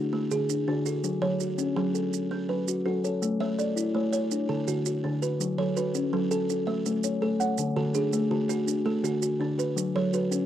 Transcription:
Already playing: D4 E4 F#4
0.13 A3
0.31 D3 G#4, maracas
0.49 D4, maracas
0.68 D3 D4 F#4
0.86 F#4 A4, maracas
1.04 F#3, maracas
1.22 F#3 C#5
1.40 F#4, maracas
1.58 C#4, maracas
1.76 F#3 G#4
1.94 A4, maracas
2.13 maracas
2.31 C#4
2.49 F#3 B4
2.68 F#4, maracas
2.86 F#3 F#4 A4
3.04 A4 C#5, maracas
3.22 A3, maracas
3.40 A3 C#5 E5
3.59 A4 D5, maracas
3.76 E4, maracas
3.95 A3 C#5
4.13 C#5, maracas
4.31 D4, maracas
4.49 D3 A4
4.68 D3 F#4, maracas
4.86 F#4, maracas
5.04 D3 D4
5.22 F#4 B4, maracas
5.41 F#3, maracas
5.58 F#3 A4 C#5
5.77 F#4 B4, maracas
5.95 C#4, maracas
6.13 F#3 A4
6.31 A4, maracas
6.50 A4, maracas
6.67 A3 E5
6.86 A3, maracas
7.04 C#5, maracas
7.22 A3 A4
7.40 C#5 F#5, maracas
7.58 D3, maracas
7.76 D3 F#4 A4
7.95 D4 G#4, maracas
8.13 A3, maracas
8.31 D3 F#4
8.49 F#4, maracas
8.67 D4, maracas
8.86 A3 A4
9.03 D3 F#4, maracas
9.22 F#4, maracas
9.40 D3 D4
9.58 F#4 B4, maracas
9.76 F#3, maracas
9.95 F#3 A4 C#5
10.13 F#4 B4, maracas
10.31 C#4, maracas

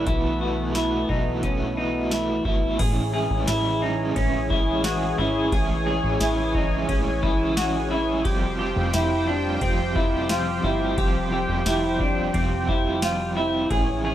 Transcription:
Already playing: E3
0.05 B1 B2 E3 A3 B3 E4 F#4, kick, closed hi-hat
0.09 B4
0.39 E4 F#4 B4
0.45 A3
0.73 A3 E4, snare, closed hi-hat
0.77 F#4 B4
1.08 B1 D#4 E4 F#4 B4, kick
1.13 A3
1.42 B2 E3 A3 C#4 E4 F#4 B4, kick, closed hi-hat
1.75 D#4 F#4 B4
1.79 A3 E4
2.10 A3 E4, snare, closed hi-hat
2.14 F#4 B4
2.44 G#1 E4 F#4 B4, kick
2.49 A3
2.78 A1 A2 E3 G#3 C#4 E4 G#4 C#5 G#5, kick, crash, ride
3.12 C#4 E4 G#4
3.18 G#3
3.30 A1
3.46 A1 E3 G#3 C#4 E4, snare, ride, tambourine
3.51 E4
3.80 C#4 D#4 E4
3.86 G#3
4.14 A1 A2 E3 G#3 C#4, kick, ride
4.18 E4
4.48 C#4 E4, kick
4.54 G#3
4.82 E3 G#3 F#4, snare, ride, tambourine
4.86 C#4 E4
5.17 G#1 C#4 E4
5.23 G#3
5.52 A1 A2 E3 G#3 C#4 E4 G#4, kick, ride
5.85 C#4 E4 G#4
5.91 G#3
6.04 A1
6.19 A1 E3 G#3 E4, snare, ride, tambourine
6.23 C#4 E4
6.53 C#4 D#4 E4, kick
6.59 G#3
6.87 A1 A2 E3 G#3 C#4 E4, kick, ride
7.21 C#4 E4, kick
7.26 G#3
7.56 E3 G#3 C#4 F#4, snare, ride, tambourine
7.61 E4
7.89 C#4 E4
7.95 G#3
8.24 F1 F3 G3 C4 F4 G4 C5 G5, kick, ride
8.57 C4 F4 G4
8.63 G3
8.76 F1
8.92 F1 F3 G3 C4 E4, snare, ride, tambourine
8.98 F4
9.26 C4 D4 F4
9.32 G3
9.60 F1 F3 G3 C4, kick, ride
9.65 F4
9.94 C4 E4 F4, kick
10.00 G3
10.28 F3 G3 C4 F4, snare, ride, tambourine
10.34 F4
10.62 G1 C4 E4 F4
10.68 G3
10.96 F1 F3 G3 C4 F4 G4 G5, kick, ride
11.30 C4 F4 G4
11.36 G3
11.49 F1
11.64 F1 F3 G3 E4, snare, ride, tambourine
11.68 C4 F4
11.98 C4 D4 F4, kick
12.04 G3
12.33 F1 F3 G3 C4 F4, kick, ride
12.67 C4 E4 F4, kick
12.72 G3
13.01 F3 G3 C4 F4, snare, ride, tambourine
13.06 F4
13.35 C4 E4 F4
13.40 G3
13.70 A1 A2 E3 G#3 C#4 G#4 C#5 G#5, kick, ride
13.74 E4
14.04 C#4 E4 G#4
14.09 G#3

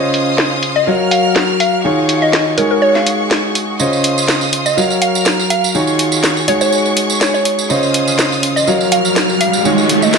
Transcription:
Already playing: C#3 C#4 F4 C5 C#5 D#5 F5 C6 D#6
0.14 open hi-hat
0.38 snare
0.63 open hi-hat
0.76 D#5
0.87 F#3 F#4 A#4 C#5 F5 F6
1.11 F5, open hi-hat
1.36 snare
1.60 F5, open hi-hat
1.84 D#3 D#4 F4 F#4 G#4 C#5 D#5 F5 C#6
2.09 open hi-hat
2.22 D#5
2.33 D#5, snare
2.58 G#3 D#4 F#4 G#4 A#4 C#5 C#6, open hi-hat
2.71 A#4
2.82 C#5
2.95 F5, snare
3.07 open hi-hat
3.31 snare
3.55 open hi-hat
3.80 C#3 C#4 F4 C5 C#5 D#5 F5 C6 D#6, tambourine
3.93 tambourine
4.04 open hi-hat
4.18 tambourine
4.28 snare, tambourine
4.41 tambourine
4.53 open hi-hat
4.66 D#5, tambourine
4.77 F#3 F#4 A#4 C#5 F5 F6, tambourine
4.90 tambourine
5.02 F5, open hi-hat
5.15 tambourine
5.25 snare, tambourine
5.39 tambourine
5.50 F5, open hi-hat
5.64 tambourine
5.75 D#3 D#4 F4 F#4 G#4 C#5 D#5 F5 C#6, tambourine
5.87 tambourine
5.99 open hi-hat
6.12 tambourine
6.24 snare, tambourine
6.37 tambourine
6.48 G#3 D#4 F#4 G#4 C#5, open hi-hat
6.61 C#5, tambourine
6.72 tambourine
6.85 tambourine
6.97 open hi-hat
7.10 tambourine
7.21 C#5, snare, tambourine
7.34 C#5, tambourine
7.45 open hi-hat
7.59 tambourine
7.70 C#3 C#4 F4 C5 C#5 D#5 F5 C6 D#6, tambourine, riser
7.83 tambourine
7.94 open hi-hat
8.07 tambourine
8.19 snare, tambourine
8.32 tambourine
8.43 open hi-hat
8.56 D#5, tambourine
8.67 F#3 F#4 A#4 C#5 F5 F6, tambourine
8.81 tambourine
8.92 F5, open hi-hat
9.05 tambourine
9.16 snare, tambourine
9.29 tambourine
9.41 F5, open hi-hat
9.53 tambourine
9.65 D#3 D#4 F4 F#4 G#4 C#5 D#5 F5 C#6, tambourine
9.78 tambourine
9.89 open hi-hat
10.02 D#5, tambourine
10.13 D#5, snare, tambourine

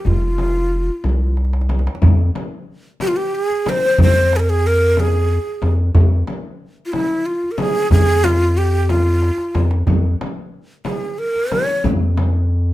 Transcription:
0.05 F1 F4, frame drum, tombak dum
0.38 tombak tek, frame drum
1.04 C2, tombak tek, frame drum
1.37 tombak tek
1.45 tombak ka
1.53 tombak tek
1.61 tombak ka
1.69 tombak tek, frame drum
1.79 tombak ka
1.87 tombak tek
1.95 tombak ka
2.02 F2, frame drum, tombak dum
2.35 tombak tek, frame drum
3.00 G4, tombak tek, frame drum
3.08 F4
3.16 G4
3.35 G#4
3.50 tombak ka
3.66 C5, tombak tek, frame drum
3.98 F2 C5, frame drum, tombak dum
4.33 G#4, tombak tek
4.39 A#4
4.50 G#4
4.67 A#4
4.97 G#4, tombak tek, frame drum
5.47 tombak ka
5.62 F2, tombak tek, frame drum
5.95 F2, tombak dum, frame drum
6.27 tombak tek, frame drum
6.86 F4
6.92 E4, tombak tek, frame drum
7.26 F4
7.44 tombak ka
7.51 A#4
7.58 G#4, tombak tek, frame drum
7.90 F2 G#4, frame drum, tombak dum
8.24 F4, tombak tek, frame drum
8.58 G4, tombak ka
8.89 F4, tombak tek, frame drum
9.22 tombak tek
9.38 tombak ka
9.55 F2, tombak tek, frame drum
9.71 tombak ka
9.87 F2, tombak dum, frame drum
10.21 tombak tek, frame drum
10.85 G#4, tombak tek, frame drum
11.19 A#4
11.36 tombak ka
11.52 C#5, tombak tek, frame drum
11.84 F2, frame drum, tombak dum
12.17 tombak tek, frame drum

